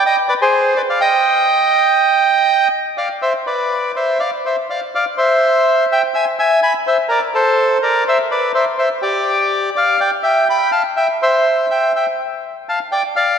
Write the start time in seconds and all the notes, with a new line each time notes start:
0.06 D#5 G5
0.29 B4 D5
0.41 G#4 C5
0.76 B4 D5
0.90 D5 F5
1.01 D#5 G5
2.98 D5 F5
3.22 C5 E5
3.47 B4 D5
3.96 C5 E5
4.20 D5 F5
4.45 C5 E5
4.70 D5 F5
4.95 D5 F5
5.18 C5 E5
5.92 E5 G5
6.14 E5 G#5
6.39 E5 G#5
6.62 G#5 B5
6.87 C5 E5
7.09 A#4 D5
7.34 A4 C5
7.82 A#4 D5
8.08 C5 E5
8.31 B4 D5
8.54 C5 E5
8.78 C5 E5
9.02 G4 D5
9.76 D5 F5
10.00 D5 G5
10.23 E5 G5
10.50 G5 B5
10.72 F5 A5
10.96 E5 G5
11.22 C5 E5
11.70 E5 G5
11.96 E5 G5
12.69 F5 A5
12.92 D5 G5
13.16 D5 F5